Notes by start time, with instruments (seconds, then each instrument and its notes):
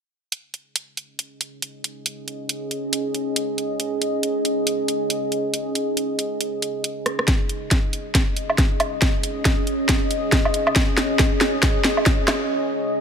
0.32 ambient pad C#4 G#4 D#5, closed hi-hat
0.54 closed hi-hat
0.76 closed hi-hat
0.97 closed hi-hat
1.19 closed hi-hat
1.41 closed hi-hat
1.62 closed hi-hat
1.84 closed hi-hat
2.06 closed hi-hat
2.28 closed hi-hat
2.49 closed hi-hat
2.71 closed hi-hat
2.93 closed hi-hat
3.15 closed hi-hat
3.36 closed hi-hat
3.58 closed hi-hat
3.80 closed hi-hat
4.02 closed hi-hat
4.23 closed hi-hat
4.45 closed hi-hat
4.67 closed hi-hat
4.88 closed hi-hat
5.10 closed hi-hat
5.32 closed hi-hat
5.54 closed hi-hat
5.75 closed hi-hat
5.97 closed hi-hat
6.19 closed hi-hat
6.41 closed hi-hat
6.62 closed hi-hat
6.84 closed hi-hat
7.06 cross-stick, closed hi-hat
7.19 cross-stick
7.28 ambient pad C#4 G#4 D#5, kick, snare, closed hi-hat
7.49 closed hi-hat
7.71 kick, snare, closed hi-hat
7.93 closed hi-hat
8.15 kick, snare, closed hi-hat
8.37 closed hi-hat
8.50 low woodblock
8.58 kick, snare, closed hi-hat
8.80 closed hi-hat, low woodblock
9.02 kick, snare, closed hi-hat
9.23 closed hi-hat
9.45 kick, snare, closed hi-hat
9.67 closed hi-hat
9.89 kick, snare, closed hi-hat
10.11 closed hi-hat
10.32 kick, snare, closed hi-hat
10.45 low woodblock
10.54 closed hi-hat
10.67 low woodblock
10.76 kick, snare, closed hi-hat
10.97 snare, closed hi-hat
11.19 kick, snare, closed hi-hat
11.41 snare, closed hi-hat
11.63 kick, snare, closed hi-hat
11.84 snare, closed hi-hat
11.97 low woodblock
12.06 kick, snare, closed hi-hat
12.28 snare, closed hi-hat, low woodblock